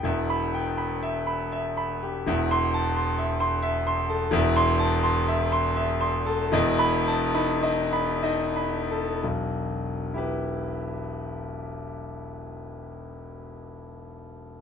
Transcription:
grand piano
0.03 E1 E2 E5
0.30 B5
0.54 G5
0.77 B5
1.03 E5
1.27 B5
1.52 E5
1.77 B5
2.03 G4
2.26 E1 E2 E5
2.51 C6
2.74 A5
2.96 C6
3.18 E5
3.40 C6
3.63 E5
3.87 C6
4.09 A4
4.31 E1 E2 E5
4.56 C6
4.79 A5
5.03 C6
5.28 E5
5.52 C6
5.76 E5
6.01 C6
6.26 A4
6.52 E1 E2 D#5
6.79 B5
7.07 A5
7.34 D#4 B5
7.63 D#5
7.93 B5
8.23 D#4 D#5
8.56 B5
8.91 A4
9.23 E1 B1
10.14 E4 G4 B4

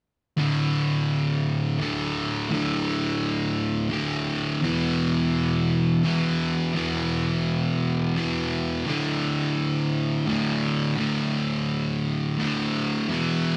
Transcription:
distorted electric guitar
0.37 D2 A2 D3
1.79 D2 A2 D3
2.49 D2 A2 D3
3.90 D2 A2 D3
4.61 E2 B2 E3
6.03 E2 B2 E3
6.73 E2 B2 E3
8.15 E2 B2 E3
8.86 D2 A2 D3
10.26 D2 A2 D3
10.97 D2 A2 D3
12.38 D2 A2 D3
13.09 E2 B2 E3

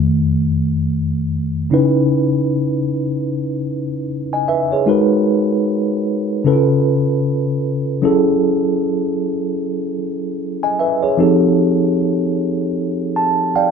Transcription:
tine electric piano
Already playing: F2 D#3 A3
1.70 C#3 C#4 D#4 E4 B4
4.33 D#5 G#5
4.48 B4 E5
4.72 G#4 C#5
4.86 G#3 D#4 F#4 A#4 B4
6.44 C#3 C#4 E4 A4 B4
6.53 F4
8.02 F#3 C#4 E4 G#4 A4
10.63 D#5 G#5
10.79 B4 E5
11.03 G#4 C#5
11.17 F3 C4 D#4 G4 A4
13.16 A5
13.56 D5 F5 G5

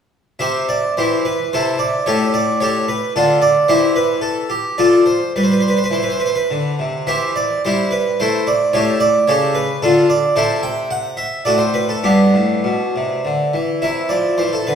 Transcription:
harpsichord
0.39 C3 G4 C5 E5
0.69 D5
0.97 E3 E4 G4 C5
1.25 B4
1.53 C3 E4 A4 C5
1.79 D5
2.06 A2 G4 A4 C#5
2.34 D5
2.60 G4 A4 C#5
2.88 B4
3.16 D3 D4 F4 A4
3.42 D5
3.68 E3 E4 G4 C5
3.96 B4
4.21 A4
4.50 G4
4.78 F3 F4 A4 D5
5.06 C5
5.36 G3 B4
5.43 C5
5.52 B4
5.60 C5
5.68 B4
5.77 C5
5.84 B4
5.91 E3 C5
6.03 B4
6.10 C5
6.20 B4
6.26 C5
6.36 B4
6.51 D3
6.79 C3
7.07 E3 G4 C5 E5
7.36 D5
7.65 G3 E4 G4 C5
7.91 B4
8.20 A3 E4 A4 C5
8.47 D5
8.73 A2 G4 A4 C#5
9.00 D5
9.28 C#3 G4 A4 C#5
9.55 B4
9.82 D3 D4 F4 A4
10.10 D5
10.36 C3 E4 A4 C5
10.63 G5
10.91 F#5
11.17 E5
11.45 A2 F#4 A4 D5
11.58 C5
11.74 B4
11.89 A4
12.04 G2 B3 D4 G4
12.34 A2
12.64 B2
12.96 C3
13.25 D3
13.54 E3
13.82 C3 E4 E5
14.09 F3 D5
14.38 E3 C5
14.53 A4
14.67 D3 B4

